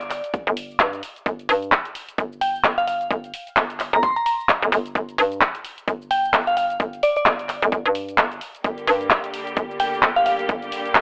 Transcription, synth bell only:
0, 0, Header, 1, 2, 480
1, 0, Start_track
1, 0, Key_signature, -2, "minor"
1, 0, Tempo, 461538
1, 1310, Time_signature, 4, 2, 24, 8
1, 11451, End_track
2, 0, Start_track
2, 0, Title_t, "Synth bell"
2, 0, Program_c, 0, 98
2, 0, Note_on_c, 0, 74, 85
2, 249, Note_off_c, 0, 74, 0
2, 2509, Note_on_c, 0, 79, 82
2, 2706, Note_off_c, 0, 79, 0
2, 2888, Note_on_c, 0, 77, 83
2, 2953, Note_off_c, 0, 77, 0
2, 2989, Note_on_c, 0, 77, 70
2, 3079, Note_off_c, 0, 77, 0
2, 4089, Note_on_c, 0, 82, 81
2, 4170, Note_off_c, 0, 82, 0
2, 4190, Note_on_c, 0, 84, 85
2, 4301, Note_off_c, 0, 84, 0
2, 4330, Note_on_c, 0, 82, 85
2, 4394, Note_off_c, 0, 82, 0
2, 4431, Note_on_c, 0, 82, 73
2, 4520, Note_off_c, 0, 82, 0
2, 6351, Note_on_c, 0, 79, 91
2, 6546, Note_off_c, 0, 79, 0
2, 6731, Note_on_c, 0, 77, 85
2, 6795, Note_off_c, 0, 77, 0
2, 6832, Note_on_c, 0, 77, 73
2, 6920, Note_off_c, 0, 77, 0
2, 7312, Note_on_c, 0, 74, 85
2, 7423, Note_off_c, 0, 74, 0
2, 7452, Note_on_c, 0, 74, 83
2, 7931, Note_off_c, 0, 74, 0
2, 10191, Note_on_c, 0, 79, 81
2, 10386, Note_off_c, 0, 79, 0
2, 10570, Note_on_c, 0, 77, 87
2, 10634, Note_off_c, 0, 77, 0
2, 10672, Note_on_c, 0, 77, 73
2, 10760, Note_off_c, 0, 77, 0
2, 11451, End_track
0, 0, End_of_file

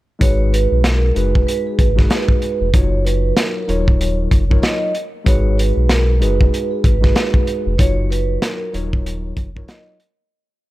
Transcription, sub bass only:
0, 0, Header, 1, 2, 480
1, 0, Start_track
1, 0, Tempo, 631579
1, 162, Time_signature, 4, 2, 24, 8
1, 8134, End_track
2, 0, Start_track
2, 0, Title_t, "Sub bass"
2, 0, Program_c, 0, 38
2, 160, Note_on_c, 0, 32, 105
2, 511, Note_off_c, 0, 32, 0
2, 544, Note_on_c, 0, 35, 88
2, 852, Note_off_c, 0, 35, 0
2, 882, Note_on_c, 0, 30, 89
2, 1100, Note_off_c, 0, 30, 0
2, 1359, Note_on_c, 0, 32, 94
2, 1578, Note_off_c, 0, 32, 0
2, 1982, Note_on_c, 0, 29, 85
2, 2072, Note_off_c, 0, 29, 0
2, 2079, Note_on_c, 0, 30, 106
2, 2530, Note_off_c, 0, 30, 0
2, 2801, Note_on_c, 0, 27, 92
2, 3251, Note_off_c, 0, 27, 0
2, 3279, Note_on_c, 0, 30, 93
2, 3498, Note_off_c, 0, 30, 0
2, 4001, Note_on_c, 0, 32, 103
2, 4352, Note_off_c, 0, 32, 0
2, 4383, Note_on_c, 0, 35, 94
2, 4721, Note_on_c, 0, 30, 101
2, 4733, Note_off_c, 0, 35, 0
2, 4939, Note_off_c, 0, 30, 0
2, 5199, Note_on_c, 0, 32, 96
2, 5418, Note_off_c, 0, 32, 0
2, 5824, Note_on_c, 0, 29, 91
2, 5913, Note_off_c, 0, 29, 0
2, 5921, Note_on_c, 0, 30, 108
2, 6371, Note_off_c, 0, 30, 0
2, 6642, Note_on_c, 0, 27, 92
2, 7092, Note_off_c, 0, 27, 0
2, 7118, Note_on_c, 0, 30, 94
2, 7338, Note_off_c, 0, 30, 0
2, 8134, End_track
0, 0, End_of_file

